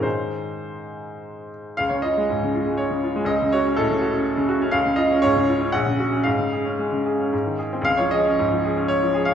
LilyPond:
<<
  \new Staff \with { instrumentName = "Grand piano" } { \time 3/4 \key des \major \tempo 4 = 117 c''2~ c''8 r8 | f''16 des''16 ees''4. des''4 | ees''8 des''8 a'4. r8 | f''8 ees''8 des''4 ges''4 |
f''2~ f''8 r8 | f''16 des''16 ees''4. des''8. f''16 | }
  \new Staff \with { instrumentName = "Grand piano" } { \clef bass \time 3/4 \key des \major <aes, ees aes ees'>2. | des,16 des16 f'16 aes16 aes,16 des16 f'16 aes8 des16 f'16 aes16 | des,16 des16 ges'16 des'16 a,16 des16 ges'16 des'8 des16 ges'16 des'16 | des,16 des16 f'16 des'16 aes,16 des16 f'16 des'16 bes,,16 des16 ges'16 des'16 |
aes,16 des16 aes'16 des'16 aes16 des16 aes'16 des'16 aes,16 ees16 aes'16 c'16 | des,16 f16 aes'16 des'16 aes,16 f16 aes'16 des'8 f16 aes'16 des'16 | }
>>